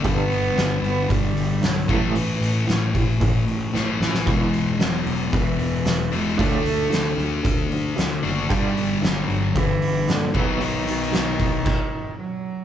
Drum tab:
CC |----------------|----------------|----------------|----------------|
HH |o-o-o-o-o-o-o-o-|o-o-o-o-o-o-----|o-o-o-o-o-o-o-o-|o-o-o-o-o-o-o-o-|
SD |----o-------o---|----o-------o-oo|----o-------o---|----o-------o---|
BD |o-------o-----o-|------o-o-------|o-------o-------|o-------o-------|

CC |----------------|--------x-------|
HH |o-o-o-o-o-o-o-o-|o-o-o-o---------|
SD |----o-------o---|----o-----------|
BD |o-------o-----o-|------o-o-------|